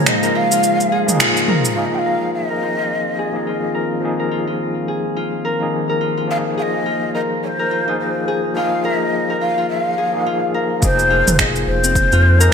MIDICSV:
0, 0, Header, 1, 8, 480
1, 0, Start_track
1, 0, Key_signature, -4, "minor"
1, 0, Tempo, 566038
1, 1498, Time_signature, 4, 2, 24, 8
1, 10630, End_track
2, 0, Start_track
2, 0, Title_t, "Ney"
2, 0, Program_c, 0, 77
2, 68, Note_on_c, 0, 75, 92
2, 302, Note_on_c, 0, 77, 98
2, 315, Note_off_c, 0, 75, 0
2, 1020, Note_off_c, 0, 77, 0
2, 1494, Note_on_c, 0, 77, 96
2, 1569, Note_on_c, 0, 75, 84
2, 1582, Note_off_c, 0, 77, 0
2, 1645, Note_on_c, 0, 79, 91
2, 1658, Note_off_c, 0, 75, 0
2, 1681, Note_on_c, 0, 77, 99
2, 1689, Note_off_c, 0, 79, 0
2, 1977, Note_off_c, 0, 77, 0
2, 1982, Note_on_c, 0, 75, 87
2, 3146, Note_off_c, 0, 75, 0
2, 5345, Note_on_c, 0, 77, 111
2, 5398, Note_off_c, 0, 77, 0
2, 5584, Note_on_c, 0, 77, 83
2, 5613, Note_on_c, 0, 75, 90
2, 5621, Note_off_c, 0, 77, 0
2, 6028, Note_off_c, 0, 75, 0
2, 6056, Note_on_c, 0, 75, 93
2, 6111, Note_off_c, 0, 75, 0
2, 6299, Note_on_c, 0, 73, 76
2, 6334, Note_on_c, 0, 72, 83
2, 6342, Note_off_c, 0, 73, 0
2, 6745, Note_off_c, 0, 72, 0
2, 6779, Note_on_c, 0, 72, 77
2, 7132, Note_off_c, 0, 72, 0
2, 7257, Note_on_c, 0, 77, 102
2, 7493, Note_on_c, 0, 75, 89
2, 7506, Note_off_c, 0, 77, 0
2, 7965, Note_off_c, 0, 75, 0
2, 7970, Note_on_c, 0, 77, 94
2, 8197, Note_off_c, 0, 77, 0
2, 8215, Note_on_c, 0, 76, 86
2, 8317, Note_off_c, 0, 76, 0
2, 8317, Note_on_c, 0, 77, 86
2, 8902, Note_off_c, 0, 77, 0
2, 9200, Note_on_c, 0, 72, 111
2, 9636, Note_off_c, 0, 72, 0
2, 9665, Note_on_c, 0, 75, 97
2, 9718, Note_off_c, 0, 75, 0
2, 9896, Note_on_c, 0, 72, 98
2, 10630, Note_off_c, 0, 72, 0
2, 10630, End_track
3, 0, Start_track
3, 0, Title_t, "Harp"
3, 0, Program_c, 1, 46
3, 0, Note_on_c, 1, 65, 84
3, 0, Note_on_c, 1, 68, 83
3, 0, Note_on_c, 1, 70, 79
3, 193, Note_off_c, 1, 70, 0
3, 196, Note_on_c, 1, 70, 74
3, 293, Note_off_c, 1, 65, 0
3, 297, Note_on_c, 1, 65, 75
3, 431, Note_off_c, 1, 65, 0
3, 434, Note_on_c, 1, 65, 83
3, 776, Note_off_c, 1, 68, 0
3, 779, Note_on_c, 1, 68, 86
3, 1016, Note_off_c, 1, 65, 0
3, 1019, Note_on_c, 1, 65, 82
3, 1257, Note_off_c, 1, 70, 0
3, 1260, Note_on_c, 1, 70, 79
3, 1496, Note_off_c, 1, 65, 0
3, 1499, Note_on_c, 1, 65, 67
3, 1738, Note_off_c, 1, 70, 0
3, 1741, Note_on_c, 1, 70, 64
3, 2116, Note_off_c, 1, 70, 0
3, 2119, Note_on_c, 1, 70, 57
3, 2215, Note_off_c, 1, 65, 0
3, 2219, Note_on_c, 1, 65, 61
3, 2357, Note_off_c, 1, 65, 0
3, 2361, Note_on_c, 1, 65, 65
3, 2699, Note_off_c, 1, 68, 0
3, 2703, Note_on_c, 1, 68, 66
3, 2938, Note_off_c, 1, 65, 0
3, 2942, Note_on_c, 1, 65, 65
3, 3172, Note_off_c, 1, 70, 0
3, 3176, Note_on_c, 1, 70, 64
3, 3554, Note_off_c, 1, 70, 0
3, 3557, Note_on_c, 1, 70, 64
3, 3655, Note_off_c, 1, 65, 0
3, 3658, Note_on_c, 1, 65, 70
3, 3790, Note_off_c, 1, 65, 0
3, 3794, Note_on_c, 1, 65, 61
3, 4136, Note_off_c, 1, 68, 0
3, 4139, Note_on_c, 1, 68, 58
3, 4376, Note_off_c, 1, 65, 0
3, 4380, Note_on_c, 1, 65, 66
3, 4615, Note_off_c, 1, 70, 0
3, 4619, Note_on_c, 1, 70, 68
3, 4995, Note_off_c, 1, 70, 0
3, 4998, Note_on_c, 1, 70, 68
3, 5091, Note_off_c, 1, 65, 0
3, 5095, Note_on_c, 1, 65, 70
3, 5232, Note_off_c, 1, 65, 0
3, 5236, Note_on_c, 1, 65, 64
3, 5572, Note_off_c, 1, 68, 0
3, 5576, Note_on_c, 1, 68, 69
3, 5813, Note_off_c, 1, 65, 0
3, 5817, Note_on_c, 1, 65, 67
3, 6055, Note_off_c, 1, 70, 0
3, 6059, Note_on_c, 1, 70, 60
3, 6435, Note_off_c, 1, 70, 0
3, 6439, Note_on_c, 1, 70, 68
3, 6534, Note_off_c, 1, 65, 0
3, 6538, Note_on_c, 1, 65, 69
3, 6676, Note_off_c, 1, 65, 0
3, 6680, Note_on_c, 1, 65, 71
3, 7016, Note_off_c, 1, 68, 0
3, 7020, Note_on_c, 1, 68, 70
3, 7260, Note_off_c, 1, 65, 0
3, 7263, Note_on_c, 1, 65, 76
3, 7499, Note_off_c, 1, 70, 0
3, 7502, Note_on_c, 1, 70, 74
3, 7881, Note_off_c, 1, 70, 0
3, 7885, Note_on_c, 1, 70, 64
3, 7979, Note_off_c, 1, 65, 0
3, 7982, Note_on_c, 1, 65, 60
3, 8118, Note_off_c, 1, 65, 0
3, 8121, Note_on_c, 1, 65, 69
3, 8459, Note_off_c, 1, 68, 0
3, 8462, Note_on_c, 1, 68, 69
3, 8700, Note_off_c, 1, 65, 0
3, 8704, Note_on_c, 1, 65, 73
3, 8937, Note_off_c, 1, 70, 0
3, 8941, Note_on_c, 1, 70, 70
3, 9413, Note_off_c, 1, 65, 0
3, 9416, Note_on_c, 1, 65, 82
3, 9655, Note_off_c, 1, 68, 0
3, 9658, Note_on_c, 1, 68, 75
3, 10039, Note_on_c, 1, 60, 74
3, 10280, Note_off_c, 1, 65, 0
3, 10283, Note_on_c, 1, 65, 107
3, 10515, Note_off_c, 1, 70, 0
3, 10518, Note_on_c, 1, 70, 104
3, 10630, Note_off_c, 1, 60, 0
3, 10630, Note_off_c, 1, 65, 0
3, 10630, Note_off_c, 1, 68, 0
3, 10630, Note_off_c, 1, 70, 0
3, 10630, End_track
4, 0, Start_track
4, 0, Title_t, "Singing bowl"
4, 0, Program_c, 2, 14
4, 1491, Note_on_c, 2, 65, 62
4, 9186, Note_off_c, 2, 65, 0
4, 10630, End_track
5, 0, Start_track
5, 0, Title_t, "Tine electric piano"
5, 0, Program_c, 3, 4
5, 0, Control_c, 3, 64, 127
5, 0, Note_on_c, 3, 53, 89
5, 0, Note_on_c, 3, 58, 76
5, 0, Note_on_c, 3, 63, 80
5, 0, Note_on_c, 3, 68, 97
5, 876, Note_off_c, 3, 53, 0
5, 881, Note_off_c, 3, 58, 0
5, 888, Note_off_c, 3, 63, 0
5, 894, Note_off_c, 3, 68, 0
5, 903, Note_on_c, 3, 53, 81
5, 912, Note_on_c, 3, 58, 70
5, 923, Note_on_c, 3, 63, 79
5, 935, Note_on_c, 3, 68, 88
5, 1466, Note_off_c, 3, 53, 0
5, 1471, Note_off_c, 3, 58, 0
5, 1476, Note_off_c, 3, 63, 0
5, 1477, Note_on_c, 3, 53, 66
5, 1482, Note_off_c, 3, 68, 0
5, 1491, Note_on_c, 3, 58, 61
5, 1502, Note_on_c, 3, 63, 63
5, 1507, Control_c, 3, 64, 0
5, 1512, Note_on_c, 3, 68, 81
5, 1660, Control_c, 3, 64, 127
5, 2794, Note_off_c, 3, 53, 0
5, 2801, Note_off_c, 3, 58, 0
5, 2807, Note_off_c, 3, 63, 0
5, 2812, Note_off_c, 3, 68, 0
5, 2817, Note_on_c, 3, 53, 67
5, 2826, Note_on_c, 3, 58, 64
5, 2839, Note_on_c, 3, 63, 59
5, 2850, Note_on_c, 3, 68, 78
5, 3383, Note_off_c, 3, 53, 0
5, 3388, Note_off_c, 3, 58, 0
5, 3394, Note_off_c, 3, 63, 0
5, 3397, Note_on_c, 3, 53, 67
5, 3399, Note_off_c, 3, 68, 0
5, 3408, Note_on_c, 3, 58, 63
5, 3418, Note_on_c, 3, 63, 67
5, 3432, Note_on_c, 3, 68, 80
5, 4714, Note_off_c, 3, 53, 0
5, 4720, Note_off_c, 3, 58, 0
5, 4725, Note_off_c, 3, 63, 0
5, 4732, Note_off_c, 3, 68, 0
5, 4738, Note_on_c, 3, 53, 65
5, 4749, Note_on_c, 3, 58, 64
5, 4761, Note_on_c, 3, 63, 64
5, 4772, Note_on_c, 3, 68, 72
5, 5304, Note_off_c, 3, 53, 0
5, 5309, Note_off_c, 3, 58, 0
5, 5315, Note_off_c, 3, 63, 0
5, 5318, Note_on_c, 3, 53, 74
5, 5321, Note_off_c, 3, 68, 0
5, 5327, Note_on_c, 3, 58, 64
5, 5340, Note_on_c, 3, 63, 67
5, 5350, Note_on_c, 3, 68, 85
5, 6635, Note_off_c, 3, 53, 0
5, 6639, Note_off_c, 3, 58, 0
5, 6646, Note_off_c, 3, 63, 0
5, 6651, Note_off_c, 3, 68, 0
5, 6656, Note_on_c, 3, 53, 70
5, 6668, Note_on_c, 3, 58, 63
5, 6680, Note_on_c, 3, 63, 65
5, 6693, Note_on_c, 3, 68, 77
5, 7223, Note_off_c, 3, 53, 0
5, 7229, Note_off_c, 3, 58, 0
5, 7234, Note_off_c, 3, 63, 0
5, 7241, Note_off_c, 3, 68, 0
5, 7242, Note_on_c, 3, 53, 76
5, 7253, Note_on_c, 3, 58, 65
5, 7264, Note_on_c, 3, 63, 67
5, 7277, Note_on_c, 3, 68, 83
5, 8557, Note_off_c, 3, 53, 0
5, 8562, Note_off_c, 3, 58, 0
5, 8568, Note_off_c, 3, 63, 0
5, 8574, Note_off_c, 3, 68, 0
5, 8582, Note_on_c, 3, 53, 69
5, 8595, Note_on_c, 3, 58, 69
5, 8605, Note_on_c, 3, 63, 63
5, 8618, Note_on_c, 3, 68, 77
5, 9145, Note_off_c, 3, 53, 0
5, 9152, Note_off_c, 3, 58, 0
5, 9157, Note_off_c, 3, 63, 0
5, 9160, Note_on_c, 3, 53, 79
5, 9164, Note_off_c, 3, 68, 0
5, 9171, Note_on_c, 3, 58, 75
5, 9183, Note_on_c, 3, 63, 74
5, 9190, Control_c, 3, 64, 0
5, 9195, Note_on_c, 3, 68, 95
5, 9319, Control_c, 3, 64, 127
5, 10476, Note_off_c, 3, 53, 0
5, 10481, Note_off_c, 3, 58, 0
5, 10487, Note_off_c, 3, 63, 0
5, 10493, Note_off_c, 3, 68, 0
5, 10503, Note_on_c, 3, 53, 77
5, 10514, Note_on_c, 3, 58, 75
5, 10526, Note_on_c, 3, 63, 76
5, 10539, Note_on_c, 3, 68, 84
5, 10630, Note_off_c, 3, 53, 0
5, 10630, Note_off_c, 3, 58, 0
5, 10630, Note_off_c, 3, 63, 0
5, 10630, Note_off_c, 3, 68, 0
5, 10630, End_track
6, 0, Start_track
6, 0, Title_t, "Ambient pad"
6, 0, Program_c, 4, 92
6, 0, Note_on_c, 4, 49, 80
6, 0, Note_on_c, 4, 56, 78
6, 0, Note_on_c, 4, 58, 75
6, 0, Note_on_c, 4, 65, 90
6, 1461, Note_off_c, 4, 56, 0
6, 1461, Note_off_c, 4, 65, 0
6, 1462, Note_off_c, 4, 49, 0
6, 1463, Note_off_c, 4, 58, 0
6, 1491, Note_on_c, 4, 56, 68
6, 1494, Note_on_c, 4, 60, 68
6, 1494, Note_on_c, 4, 65, 86
6, 1495, Note_on_c, 4, 51, 76
6, 5302, Note_off_c, 4, 60, 0
6, 5334, Note_on_c, 4, 58, 73
6, 9141, Note_off_c, 4, 56, 0
6, 9142, Note_off_c, 4, 51, 0
6, 9142, Note_off_c, 4, 58, 0
6, 9142, Note_off_c, 4, 65, 0
6, 10630, End_track
7, 0, Start_track
7, 0, Title_t, "Analog synth bass"
7, 0, Program_c, 5, 38
7, 9179, Note_on_c, 5, 29, 106
7, 9520, Note_off_c, 5, 29, 0
7, 9562, Note_on_c, 5, 29, 88
7, 9872, Note_off_c, 5, 29, 0
7, 9898, Note_on_c, 5, 29, 83
7, 10240, Note_off_c, 5, 29, 0
7, 10279, Note_on_c, 5, 41, 102
7, 10591, Note_off_c, 5, 41, 0
7, 10630, End_track
8, 0, Start_track
8, 0, Title_t, "Drums"
8, 55, Note_on_c, 9, 26, 103
8, 55, Note_on_c, 9, 69, 53
8, 139, Note_off_c, 9, 26, 0
8, 140, Note_off_c, 9, 69, 0
8, 196, Note_on_c, 9, 69, 31
8, 281, Note_off_c, 9, 69, 0
8, 438, Note_on_c, 9, 69, 64
8, 522, Note_off_c, 9, 69, 0
8, 537, Note_on_c, 9, 69, 54
8, 621, Note_off_c, 9, 69, 0
8, 682, Note_on_c, 9, 69, 35
8, 767, Note_off_c, 9, 69, 0
8, 921, Note_on_c, 9, 45, 65
8, 921, Note_on_c, 9, 69, 67
8, 1006, Note_off_c, 9, 45, 0
8, 1006, Note_off_c, 9, 69, 0
8, 1018, Note_on_c, 9, 26, 100
8, 1019, Note_on_c, 9, 69, 56
8, 1103, Note_off_c, 9, 26, 0
8, 1104, Note_off_c, 9, 69, 0
8, 1160, Note_on_c, 9, 69, 34
8, 1245, Note_off_c, 9, 69, 0
8, 1257, Note_on_c, 9, 45, 88
8, 1342, Note_off_c, 9, 45, 0
8, 1398, Note_on_c, 9, 69, 64
8, 1483, Note_off_c, 9, 69, 0
8, 9179, Note_on_c, 9, 36, 115
8, 9179, Note_on_c, 9, 69, 58
8, 9264, Note_off_c, 9, 36, 0
8, 9264, Note_off_c, 9, 69, 0
8, 9320, Note_on_c, 9, 69, 33
8, 9405, Note_off_c, 9, 69, 0
8, 9562, Note_on_c, 9, 45, 83
8, 9562, Note_on_c, 9, 69, 66
8, 9646, Note_off_c, 9, 45, 0
8, 9647, Note_off_c, 9, 69, 0
8, 9658, Note_on_c, 9, 26, 99
8, 9658, Note_on_c, 9, 36, 105
8, 9659, Note_on_c, 9, 69, 54
8, 9743, Note_off_c, 9, 26, 0
8, 9743, Note_off_c, 9, 36, 0
8, 9744, Note_off_c, 9, 69, 0
8, 9800, Note_on_c, 9, 69, 33
8, 9885, Note_off_c, 9, 69, 0
8, 10040, Note_on_c, 9, 69, 65
8, 10125, Note_off_c, 9, 69, 0
8, 10138, Note_on_c, 9, 36, 102
8, 10139, Note_on_c, 9, 69, 58
8, 10222, Note_off_c, 9, 36, 0
8, 10224, Note_off_c, 9, 69, 0
8, 10279, Note_on_c, 9, 69, 32
8, 10363, Note_off_c, 9, 69, 0
8, 10521, Note_on_c, 9, 69, 70
8, 10606, Note_off_c, 9, 69, 0
8, 10630, End_track
0, 0, End_of_file